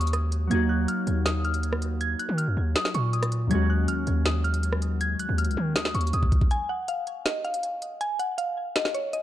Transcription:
Already playing: D#2 F#3 G#3 C#4 F#4 C#6
0.01 closed hi-hat
0.07 closed hi-hat
0.13 D#6, cross-stick, closed hi-hat
0.32 closed hi-hat
0.47 D#2 F#3 A#3 G#6, closed hi-hat
0.52 D#4 F#4
0.69 F#6
0.88 F6, closed hi-hat
1.07 D#2, closed hi-hat
1.26 D#6, snare, closed hi-hat
1.45 F6, closed hi-hat
1.54 closed hi-hat
1.63 closed hi-hat
1.73 cross-stick
1.82 closed hi-hat
2.01 G#6, closed hi-hat
2.19 F#6, closed hi-hat
2.29 D#3
2.38 F6, closed hi-hat
2.48 F#2
2.57 D#2
2.76 D#6, snare, closed hi-hat
2.85 snare
2.94 A#2 C#6, closed hi-hat
3.13 D#6, closed hi-hat
3.23 cross-stick, closed hi-hat
3.32 closed hi-hat
3.48 D#2 F#3 G#3 G#6, closed hi-hat
3.53 C#4 F#4
3.70 F#6
3.88 F6, closed hi-hat
4.07 D#2, closed hi-hat
4.26 D#6, snare, closed hi-hat
4.44 F6, closed hi-hat
4.54 closed hi-hat
4.63 closed hi-hat
4.73 cross-stick
4.82 closed hi-hat
5.01 G#6, closed hi-hat
5.19 F#6, closed hi-hat
5.29 D#2
5.38 F6, closed hi-hat
5.45 C#2, closed hi-hat
5.51 closed hi-hat
5.57 D#3
5.76 D#6, snare, closed hi-hat
5.85 snare
5.94 D#2 C#6, closed hi-hat
6.01 closed hi-hat
6.07 closed hi-hat
6.13 D#2 D#6, closed hi-hat
6.23 kick
6.32 kick, closed hi-hat
6.41 kick
6.51 G#5, closed hi-hat
6.69 F#5
6.88 F5, closed hi-hat
7.07 closed hi-hat
7.26 D#5, snare, closed hi-hat
7.45 F5, closed hi-hat
7.54 closed hi-hat
7.63 closed hi-hat
7.82 closed hi-hat
8.01 G#5, closed hi-hat
8.19 F#5, closed hi-hat
8.38 F5, closed hi-hat
8.76 D#5, snare, closed hi-hat
8.85 snare
8.94 C#5, closed hi-hat
9.13 D#5, closed hi-hat

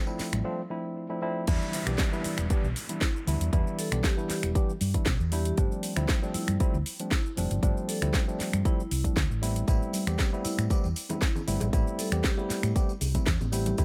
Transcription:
0.06 F3 A3 C4 D4 E4, tambourine
0.19 muted fingered electric bass stroke, snare, open hi-hat, tambourine
0.32 A1, finger snap, closed hi-hat, tambourine, high conga
0.44 F3 A3 C4 D4 F4
0.70 F3 A3 C4 D4 E4
1.09 F3 A3 C4 D4 E4
1.21 F3 A3 C4 D4 E4
1.47 E2 E3 G3 B3 D4 E4, kick, closed hi-hat, crash, downlifter, shaker
1.62 shaker
1.73 open hi-hat, shaker
1.86 B1 E3 G3 B3 D4 G4, finger snap, closed hi-hat, shaker
1.98 kick, snare, closed hi-hat, shaker
2.12 E3 G3 B3 D4 E4, shaker
2.24 E4, muted fingered electric bass stroke, open hi-hat, shaker
2.38 E1, finger snap, closed hi-hat, shaker
2.50 E3 G3 B3 D4 G4, kick, closed hi-hat, shaker
2.64 B1, shaker
2.76 open hi-hat, shaker
2.89 E3 G3 B3 D4 E4, closed hi-hat, shaker
3.01 E4, kick, snare, closed hi-hat, shaker
3.16 shaker
3.27 D2 E3 G3 B3 D4 E4, open hi-hat, shaker
3.40 E2, closed hi-hat, shaker
3.52 E2 E3 G3 B3 D4 E4, kick, closed hi-hat, shaker
3.67 shaker
3.78 A4, open hi-hat, shaker
3.91 B1 E3 G3 B3 D4 G4, finger snap, closed hi-hat, shaker
4.04 G4, kick, snare, closed hi-hat, shaker
4.17 E3 G3 B3 D4 E4 G4, shaker
4.29 G4, muted fingered electric bass stroke, snare, open hi-hat, shaker
4.43 E1, finger snap, closed hi-hat, shaker
4.55 E3 G3 B3 D4 G4, kick, closed hi-hat, shaker
4.70 shaker
4.81 G2, open hi-hat, shaker
4.94 E3 G3 B3 D4 E4, muted fingered electric bass stroke, kick, closed hi-hat, shaker
5.06 B1, kick, snare, closed hi-hat, shaker
5.20 E2, shaker
5.32 E3 G3 B3 D4 E4 G4, open hi-hat, shaker
5.45 G4, closed hi-hat, shaker
5.57 G1 F3 G3 A3 C4 D4, kick, closed hi-hat, shaker
5.72 shaker
5.83 open hi-hat, shaker
5.96 D2 F3 G3 A3 C4 E4, finger snap, closed hi-hat, shaker
6.08 kick, snare, closed hi-hat, shaker
6.22 F3 G3 A3 C4 D4, shaker
6.34 E4, muted fingered electric bass stroke, open hi-hat, shaker
6.48 G2, finger snap, closed hi-hat, shaker
6.60 F3 G3 A3 C4 E4, muted fingered electric bass stroke, kick, closed hi-hat, shaker
6.74 D2, shaker
6.86 open hi-hat, shaker
6.99 F3 G3 A3 C4 D4, closed hi-hat, shaker
7.11 E4, kick, snare, closed hi-hat, shaker
7.26 shaker
7.37 F1 F3 G3 A3 C4 D4, open hi-hat, shaker
7.51 G1, closed hi-hat, shaker
7.63 G1 F3 G3 A3 C4 D4, kick, closed hi-hat, shaker
7.77 shaker
7.89 A4, open hi-hat, shaker
8.01 D2 F3 G3 A3 C4 E4, finger snap, closed hi-hat, shaker
8.14 kick, snare, closed hi-hat, shaker
8.27 F3 G3 A3 C4 D4, shaker
8.40 muted fingered electric bass stroke, snare, open hi-hat, shaker
8.53 G2, finger snap, closed hi-hat, shaker
8.65 F3 G3 A3 C4 E4, kick, closed hi-hat, shaker
8.80 shaker
8.91 C2, open hi-hat, shaker
9.04 F3 G3 A3 C4 D4, kick, closed hi-hat, shaker
9.17 D2, kick, snare, closed hi-hat, shaker
9.30 A1, shaker
9.42 G3 A3 B3 C4 E4, open hi-hat, shaker
9.56 closed hi-hat, shaker
9.67 A1 G3 A3 B3 C4 E4, kick, closed hi-hat, tambourine, shaker
9.82 shaker
9.93 open hi-hat, tambourine, high conga, shaker
10.07 E2 G3 A3 B3 C4 G4, finger snap, closed hi-hat, tambourine, shaker
10.19 kick, snare, closed hi-hat, tambourine, shaker
10.32 G3 A3 B3 C4 E4, shaker
10.44 E4, muted fingered electric bass stroke, open hi-hat, tambourine, shaker
10.58 A2, finger snap, closed hi-hat, tambourine, shaker
10.70 G3 A3 B3 C4 G4, kick, closed hi-hat, tambourine, shaker
10.84 E2, tambourine, shaker
10.96 open hi-hat, tambourine, shaker
11.09 G3 A3 B3 C4 E4, closed hi-hat, tambourine, high bongo, low conga, shaker
11.21 E4, kick, snare, closed hi-hat, tambourine, shaker
11.35 tambourine, high bongo, low conga, shaker
11.47 G1 G3 A3 B3 C4 E4, open hi-hat, tambourine, shaker
11.60 A1, closed hi-hat, tambourine, high bongo, high conga, low conga, shaker
11.73 A1 G3 A3 B3 C4 E4, kick, closed hi-hat, tambourine, shaker
11.87 shaker
11.98 A4, open hi-hat, tambourine, high conga, shaker
12.12 E2 G3 A3 B3 C4 G4, finger snap, closed hi-hat, tambourine, shaker
12.24 G4, kick, snare, closed hi-hat, tambourine, shaker
12.37 G3 A3 B3 C4 E4 G4, high bongo, shaker
12.50 G4, muted fingered electric bass stroke, snare, open hi-hat, tambourine, shaker
12.63 A2, finger snap, closed hi-hat, tambourine, shaker
12.75 G3 A3 B3 C4 G4, kick, closed hi-hat, tambourine, shaker
12.89 tambourine, shaker
13.01 C2, open hi-hat, tambourine, high bongo, shaker
13.14 G3 A3 B3 C4 E4, kick, closed hi-hat, tambourine, low conga, shaker
13.26 E2, kick, snare, closed hi-hat, tambourine, shaker
13.41 A1, tambourine, low conga, shaker
13.52 G3 A3 B3 C4 E4 G4, open hi-hat, tambourine, shaker
13.66 G4, closed hi-hat, tambourine, high conga, low conga, shaker
13.77 D2 F3 A3 C4 D4 E4, kick, closed hi-hat, tambourine, shaker

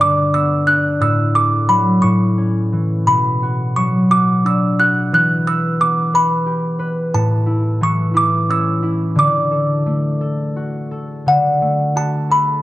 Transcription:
Already playing: G2 D3 B3
0.00 D4 D6
0.34 B3 E6
0.67 D4 F#6
1.00 A2 E6
1.34 A4 D6
1.68 F#3 B5
2.02 A2 C#6
2.38 C#4
2.72 E3
3.06 B2 B5
3.43 F#4
3.77 F#3 C#6
4.11 F#4 D6
4.45 D4 E6
4.79 F#4 F#6
5.12 E3 F#6
5.47 B4 E6
5.80 B3 D6
6.14 B4 B5
6.46 G4
6.79 B4
7.14 A2 A5
7.46 E4
7.81 E3 C#6
8.14 E4 D6
8.49 C#4 E6
8.83 E4
9.15 D3 D6
9.51 A4
9.86 A3
10.21 A4
10.56 F#4
10.91 A4
11.26 D3 F#5
11.61 A3
11.96 F#4 A5
12.30 A4 B5

